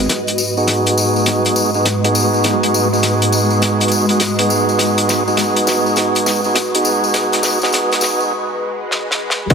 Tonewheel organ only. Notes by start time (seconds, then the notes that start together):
0.57 B3 D#4 F#4 G#4
1.75 B3 D#4 F#4 G#4
2.04 B3 D#4 F#4 G#4
2.93 B3 D#4 F#4 G#4
4.10 B3 D#4 F#4 G#4
4.39 B3 D#4 F#4 G#4
5.28 B3 D#4 F#4 G#4
6.46 B3 D#4 F#4 G#4
6.75 B3 D#4 F#4 G#4
7.63 B3 D#4 F#4 G#4
9.50 B3 D#4 F#4 G#4